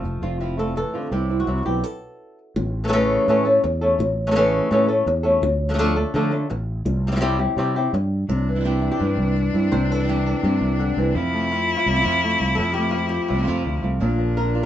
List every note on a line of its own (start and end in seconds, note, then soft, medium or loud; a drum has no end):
0.00 0.19 F1 medium
0.00 0.77 F3 medium
0.00 0.56 A3 soft
0.00 0.58 A4 medium
0.05 muted nylon-string guitar stroke soft
0.22 0.83 F1 medium
0.22 0.40 G3 soft
0.22 0.40 C4 soft
0.22 0.40 F4 soft
0.22 0.40 F4 medium
0.40 0.58 F3 soft
0.40 0.58 G3 medium
0.40 0.57 C4 medium
0.40 0.89 E4 medium
0.40 0.57 F4 medium
0.57 0.75 G3 soft
0.57 1.12 A3 soft
0.57 0.75 C4 soft
0.57 0.76 F4 soft
0.57 0.76 A4 medium
0.76 0.95 E3 medium
0.76 1.12 A4 medium
0.76 muted nylon-string guitar stroke medium
0.93 1.12 D3 medium
0.93 1.11 G3 soft
0.93 1.12 C4 soft
0.93 1.11 F4 soft
1.11 1.42 C2 medium
1.11 1.30 C3 medium
1.11 1.47 C3 medium
1.11 1.30 E3 medium
1.11 1.30 G3 medium
1.11 1.29 C4 medium
1.11 1.28 E4 medium
1.11 1.39 G4 medium
1.29 1.47 G3 soft
1.29 1.48 C4 soft
1.29 1.47 E4 soft
1.40 1.56 F#4 medium
1.47 1.63 C2 medium
1.47 1.67 C3 medium
1.47 1.84 E4 medium
1.47 muted nylon-string guitar stroke soft
1.57 1.65 F#4 medium
1.65 1.81 B1 medium
1.65 1.85 B2 soft
1.65 1.84 G3 soft
1.65 1.84 C4 soft
1.65 1.83 E4 soft
1.65 1.84 G4 medium
1.84 2.38 A4 medium
2.56 3.17 A1 loud
2.56 muted nylon-string guitar stroke medium
2.84 2.87 E3 soft
2.84 2.87 A3 medium
2.84 2.88 C#4 medium
2.84 2.88 A4 medium
2.88 2.92 E3 medium
2.88 2.92 A3 medium
2.88 2.92 C#4 medium
2.88 2.92 A4 medium
2.93 3.27 C#3 medium
2.93 3.28 E3 medium
2.93 3.28 A3 medium
2.93 3.28 C#4 medium
2.93 3.28 A4 loud
3.28 3.58 A2 medium
3.28 3.45 C#3 medium
3.28 3.46 E3 medium
3.28 3.45 A3 medium
3.28 3.45 C#4 medium
3.28 3.44 A4 medium
3.45 3.63 A3 soft
3.45 3.63 C#4 medium
3.45 3.63 A4 medium
3.64 3.94 E2 medium
3.64 muted nylon-string guitar stroke medium
3.81 4.00 A3 soft
3.81 3.99 C#4 medium
3.81 3.99 A4 medium
3.99 4.60 A1 loud
3.99 muted nylon-string guitar stroke medium
4.27 4.30 E3 medium
4.27 4.30 A3 medium
4.27 4.30 C#4 medium
4.27 4.31 A4 medium
4.31 4.35 E3 medium
4.31 4.35 A3 medium
4.31 4.35 C#4 medium
4.31 4.35 A4 medium
4.35 4.69 C#3 medium
4.35 4.70 E3 loud
4.35 4.70 A3 loud
4.35 4.71 C#4 medium
4.35 4.71 A4 medium
4.71 5.01 A2 medium
4.71 4.88 C#3 medium
4.71 4.88 E3 medium
4.71 4.89 A3 medium
4.71 4.88 C#4 medium
4.71 4.87 A4 medium
4.88 5.06 A3 soft
4.88 5.06 C#4 medium
4.88 5.06 A4 medium
5.06 5.37 E2 medium
5.06 muted nylon-string guitar stroke medium
5.23 5.42 A3 medium
5.23 5.42 C#4 medium
5.23 5.41 A4 medium
5.42 6.03 D2 loud
5.42 muted nylon-string guitar stroke medium
5.69 5.73 F3 medium
5.69 5.73 A3 medium
5.69 5.74 D4 medium
5.69 5.74 A4 medium
5.74 5.78 F3 medium
5.74 5.78 A3 medium
5.74 5.78 D4 medium
5.74 5.78 A4 medium
5.78 5.96 D3 medium
5.78 5.96 F3 loud
5.78 5.96 A3 medium
5.78 5.95 D4 medium
5.78 5.95 A4 medium
5.96 6.14 A3 soft
5.96 6.14 D4 soft
5.96 6.13 A4 medium
6.14 6.31 D3 medium
6.14 6.44 D3 medium
6.14 6.32 F3 medium
6.14 6.32 A3 medium
6.14 6.31 D4 medium
6.14 6.30 A4 medium
6.31 6.49 A3 medium
6.31 6.49 D4 soft
6.31 6.49 A4 medium
6.50 6.81 A1 medium
6.50 muted nylon-string guitar stroke medium
6.85 7.46 C2 loud
6.85 muted nylon-string guitar stroke medium
7.07 7.10 G3 medium
7.07 7.11 C4 medium
7.07 7.11 E4 medium
7.07 7.11 G4 medium
7.12 7.15 G3 medium
7.12 7.15 C4 medium
7.12 7.16 E4 medium
7.12 7.16 G4 medium
7.16 7.19 G3 medium
7.16 7.20 C4 medium
7.16 7.21 E4 medium
7.16 7.21 G4 medium
7.21 7.38 C3 medium
7.21 7.38 G3 medium
7.21 7.38 C4 medium
7.21 7.38 E4 loud
7.21 7.38 G4 loud
7.39 7.57 C4 soft
7.39 7.57 E4 soft
7.39 7.57 G4 medium
7.56 7.87 C3 medium
7.56 7.75 C3 medium
7.56 7.75 G3 medium
7.56 7.75 C4 medium
7.56 7.75 E4 medium
7.56 7.75 G4 medium
7.76 7.93 C4 soft
7.76 7.93 E4 medium
7.76 7.93 G4 medium
7.93 8.23 G2 medium
7.93 muted nylon-string guitar stroke medium
8.28 8.89 C2 medium
8.28 8.47 C3 medium
8.28 11.17 D4 loud
8.28 muted nylon-string guitar stroke medium
8.48 9.89 E3 soft
8.55 8.58 E3 soft
8.55 8.59 G3 soft
8.55 8.59 C4 soft
8.55 8.60 E4 soft
8.59 8.63 E3 soft
8.59 8.64 G3 soft
8.59 8.64 C4 medium
8.59 8.64 E4 medium
8.64 8.98 C3 medium
8.64 8.99 E3 medium
8.64 8.99 G3 medium
8.64 9.00 C4 medium
8.64 9.00 E4 medium
8.64 8.90 G4 medium
8.82 9.54 E4 soft
8.92 9.71 G4 medium
9.00 9.70 G2 medium
9.00 9.16 G2 medium
9.00 9.35 C3 medium
9.00 9.35 E3 medium
9.00 9.35 G3 medium
9.00 9.36 C4 medium
9.00 9.35 E4 medium
9.17 9.48 C2 medium
9.36 muted nylon-string guitar stroke medium
9.53 9.69 G2 medium
9.53 9.72 G3 soft
9.53 9.72 C4 soft
9.53 9.71 E4 soft
9.53 9.70 E4 medium
9.71 10.33 C2 medium
9.71 9.90 C3 medium
9.71 9.92 C5 medium
9.71 muted nylon-string guitar stroke medium
9.90 10.96 E3 medium
9.90 10.24 A4 medium
9.95 9.98 E3 soft
9.95 9.98 G3 soft
9.95 9.99 C4 soft
9.95 9.99 E4 soft
9.99 10.02 E3 soft
9.99 10.03 G3 soft
9.99 10.03 C4 soft
9.99 10.04 E4 medium
10.04 10.07 E3 medium
10.04 10.08 G3 medium
10.04 10.08 C4 medium
10.04 10.08 E4 medium
10.08 10.43 C3 medium
10.08 10.43 E3 medium
10.08 10.44 G3 medium
10.08 10.44 C4 medium
10.08 10.44 E4 medium
10.08 10.43 G4 medium
10.26 10.80 A4 medium
10.43 10.59 G2 medium
10.43 11.13 C3 medium
10.43 10.78 C3 medium
10.43 10.79 E3 medium
10.43 10.79 G3 medium
10.43 10.79 C4 medium
10.43 10.80 E4 medium
10.43 11.16 G4 medium
10.61 10.92 C2 loud
10.79 10.97 D3 medium
10.79 muted nylon-string guitar stroke medium
10.97 11.12 C2 medium
10.97 11.16 E3 medium
10.97 11.16 G3 soft
10.97 11.16 C4 soft
10.97 11.15 E4 soft
11.15 11.76 F2 loud
11.15 11.51 C3 medium
11.15 11.51 F3 medium
11.15 12.57 F3 medium
11.15 11.51 A3 medium
11.15 11.51 C4 medium
11.15 13.83 E4 loud
11.33 12.23 A3 medium
11.52 11.87 A3 soft
11.52 11.87 C4 soft
11.52 11.75 F4 medium
11.77 12.76 F4 medium
11.86 12.02 C2 medium
11.86 12.57 C3 medium
11.86 muted nylon-string guitar stroke soft
11.92 11.95 F3 soft
11.92 11.95 A3 medium
11.92 11.95 C4 soft
11.92 11.96 F4 soft
11.96 11.99 F3 soft
11.96 12.00 A3 soft
11.96 12.00 C4 medium
11.96 12.01 F4 medium
12.00 12.04 F3 medium
12.00 12.04 A3 medium
12.00 12.05 C4 medium
12.00 12.05 F4 medium
12.05 12.35 F2 medium
12.05 12.22 C3 medium
12.05 12.22 F3 medium
12.05 12.22 A3 medium
12.05 12.23 C4 medium
12.05 12.23 F4 medium
12.23 12.40 F3 soft
12.23 12.40 A3 soft
12.23 12.76 A3 soft
12.23 12.41 C4 soft
12.23 12.40 F4 soft
12.40 12.55 C2 medium
12.40 12.58 A3 soft
12.40 12.58 C4 soft
12.40 12.58 F4 soft
12.55 13.19 F2 loud
12.55 12.94 C3 medium
12.55 14.18 F3 medium
12.55 12.73 A4 medium
12.59 12.94 F3 medium
12.59 12.94 A3 medium
12.59 12.94 C4 medium
12.74 13.47 A3 medium
12.74 13.08 G4 loud
12.91 13.27 F4 medium
12.96 13.29 A3 soft
12.96 13.29 C4 soft
13.09 13.64 G4 medium
13.28 13.45 C2 medium
13.28 13.99 C3 medium
13.28 14.00 F4 medium
13.28 muted nylon-string guitar stroke medium
13.34 13.37 F3 soft
13.34 13.37 A3 soft
13.34 13.38 C4 soft
13.34 13.38 F4 soft
13.38 13.41 F3 medium
13.38 13.42 A3 soft
13.38 13.42 C4 medium
13.38 13.43 F4 medium
13.43 13.46 F3 medium
13.43 13.46 A3 medium
13.43 13.46 C4 medium
13.43 13.47 F4 medium
13.47 13.63 F2 medium
13.47 13.64 C3 medium
13.47 13.64 F3 medium
13.47 13.64 A3 medium
13.47 14.01 A3 soft
13.47 13.65 C4 medium
13.47 13.65 F4 medium
13.65 13.82 D2 medium
13.65 13.82 F3 soft
13.65 13.83 A3 soft
13.65 13.82 C4 soft
13.65 13.81 F4 soft
13.82 13.99 C2 medium
13.82 14.00 A3 soft
13.82 14.01 C4 soft
13.82 14.00 F4 soft
14.00 14.61 A#1 medium
14.00 14.66 A#2 medium
14.00 14.35 D3 medium
14.00 14.36 A#3 medium
14.00 14.66 D4 loud
14.00 14.36 D4 medium
14.00 14.36 F4 medium
14.18 14.66 F3 medium
14.37 14.54 D3 soft
14.37 14.54 A#3 soft
14.37 14.54 D4 soft
14.37 14.53 F4 soft
14.37 14.62 A#4 medium
14.54 14.66 A#3 soft
14.54 14.66 D4 soft
14.54 14.66 F4 soft